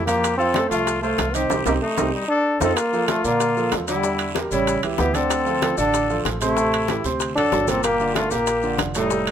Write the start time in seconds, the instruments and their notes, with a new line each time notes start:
Already playing: upright bass F2
0.06 grand piano F3 F4 F5, trombone A#3, muted trumpet G4, high conga, high timbale, short guiro, maracas
0.23 high bongo, high timbale, long guiro, maracas
0.37 grand piano F3 F4 F5, trombone C4, muted trumpet A4, high conga, maracas
0.54 grand piano A3 A4 C5, high bongo, high conga, high timbale, short guiro, maracas
0.69 upright bass C2, grand piano F3 F4 F5, trombone A3, muted trumpet F4, high conga, short guiro, maracas
0.87 high bongo, high conga, high timbale, long guiro, maracas
1.02 trombone A3, grand piano A3 A4 C5, muted trumpet F4, high conga, maracas
1.18 upright bass C2, high bongo, low bongo, high conga, high timbale, low timbale, short guiro, maracas
1.33 grand piano D#3 D#4 D#5, trombone C4, muted trumpet G4, high timbale, short guiro, maracas
1.50 upright bass C2, grand piano C4 D#4 G4, low bongo, high conga, high timbale, long guiro, maracas
1.65 upright bass C2, trombone A#3, grand piano C4 D#4 G4, muted trumpet G4, low bongo, high conga, high timbale, long guiro, maracas
1.81 trombone A3, muted trumpet D#4
1.98 upright bass C2, grand piano C4 D#4 G4, low bongo, high conga, high timbale, long guiro, maracas
2.13 trombone G3, muted trumpet D#4
2.28 trombone D4, muted trumpet A4
2.60 upright bass F2, trombone C4, grand piano D#4 F4 A4, muted trumpet A4, low bongo, high conga, high timbale, long guiro, maracas
2.76 trombone A#3, muted trumpet F4, high bongo, high conga, high timbale, long guiro, maracas
2.93 grand piano F3 F4 A4, high conga, maracas
3.08 grand piano F3 F4 A4, trombone A3, muted trumpet F4, high bongo, high conga, high timbale, short guiro, maracas
3.24 upright bass A#2, grand piano D3 D4 D5, trombone A#3, muted trumpet F4, high conga, short guiro, maracas
3.40 high bongo, high conga, high timbale, long guiro, maracas
3.56 grand piano F3 F4 A4, high conga, maracas
3.72 upright bass E2, high bongo, low bongo, high conga, high timbale, low timbale, short guiro, maracas
3.87 grand piano D3 D4 D5, trombone G3, muted trumpet E4, high timbale, short guiro, maracas
4.04 grand piano D3 D4 D5, high bongo, high conga, long guiro, maracas
4.19 high bongo, high conga, high timbale, maracas
4.35 grand piano G3 G4 A#4, high bongo, high conga, high timbale, short guiro, maracas
4.51 upright bass A1, grand piano C#3 C#4 C#5, trombone G3, muted trumpet E4, high bongo, high conga, short guiro, maracas
4.67 high bongo, high timbale, long guiro, maracas
4.83 upright bass C#2, grand piano E3 E4 G4, high bongo, high conga, high timbale, maracas
4.98 upright bass D2, grand piano E3 E4 G4, trombone B3, muted trumpet G4, high bongo, low bongo, high conga, low timbale, short guiro, maracas
5.14 grand piano D3 D4 D5, trombone C4, muted trumpet A4, high conga, high timbale, short guiro, maracas
5.30 high bongo, high timbale, long guiro, maracas
5.46 grand piano F3 F4 A4, high conga, maracas
5.62 grand piano F3 F4 A4, high bongo, high conga, high timbale, short guiro, maracas
5.77 upright bass A1, grand piano D3 D4 D5, trombone D4, muted trumpet A4, high conga, short guiro, maracas
5.94 high bongo, high conga, high timbale, long guiro, maracas
6.09 grand piano F3 F4 A4, high conga, maracas
6.25 upright bass A1, high bongo, low bongo, high conga, high timbale, short guiro, maracas
6.41 grand piano C3 C4 C5, trombone A3, muted trumpet E4, high timbale, short guiro, maracas
6.56 grand piano C3 C4 C5, high bongo, long guiro, maracas
6.73 high bongo, high conga, high timbale, maracas
6.88 grand piano E3 E4 G4, high bongo, high conga, high timbale, short guiro, maracas
7.04 upright bass D2, grand piano C3 C4 C5, high bongo, high conga, short guiro, maracas
7.20 high bongo, high conga, high timbale, long guiro, maracas
7.35 upright bass A1, grand piano F#3 F#4 A4, trombone D4, muted trumpet A4, high bongo, high timbale, maracas
7.52 upright bass G1, grand piano F#3 F#4 A4, high bongo, low bongo, high conga, short guiro, maracas
7.68 grand piano A#2 A#3 A#4, trombone C4, muted trumpet A4, high conga, high timbale, short guiro, maracas
7.83 trombone A#3, muted trumpet G4, high bongo, high conga, high timbale, long guiro, maracas
8.00 grand piano D3 D4 F4, high conga, maracas
8.15 grand piano D3 D4 F4, trombone A3, muted trumpet F4, high bongo, high conga, high timbale, short guiro, maracas
8.31 upright bass A#1, grand piano A#2 A#3 A#4, trombone A#3, muted trumpet G4, high conga, short guiro, maracas
8.47 high bongo, high conga, high timbale, long guiro, maracas
8.62 grand piano D3 D4 F4, high conga, maracas
8.78 upright bass F1, high bongo, low bongo, high conga, high timbale, short guiro, maracas
8.95 grand piano A2 A3 A4, trombone G3, muted trumpet D#4, high timbale, short guiro, maracas
9.10 grand piano A2 A3 A4, high bongo, high conga, long guiro, maracas
9.25 high bongo, high conga, high timbale, maracas